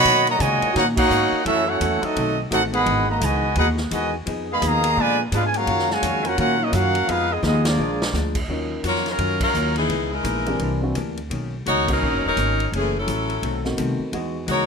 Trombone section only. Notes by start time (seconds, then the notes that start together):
Already playing: D#3 F#3 B3
0.26 D#3 F#3 A#3
0.38 A#2 D#3 G#3
0.73 A#3 D#4 F#4
0.96 A#3 D#4 F#4
1.44 A3 C#4 E4
1.67 A3 C#4 F#4
2.03 F#3 A3 D#4
2.51 A3 D#4 F#4
2.73 D#3 G#3 B3
3.08 A#3
3.23 B2 D#3 G#3
3.56 B3 D#4 F#4
3.91 B2 D#3 G#3
4.51 D#3 G#3 B3
4.64 B2 D#3 A#3
5.00 D3 F3 G#3
5.34 G#3 D4 F4
5.57 C#3 F#3 A#3
5.91 A#2 C#3 G#3
6.26 A#3 C#4 F#4
6.38 A#3 C#4 F#4
6.58 F#3 A#3 D#4
6.73 A#3 C#4 F#4
7.08 G#3 B3 F4
7.30 G#3 B3 D#4
7.43 G#3 B3 D#4
7.65 F3 G#3 D4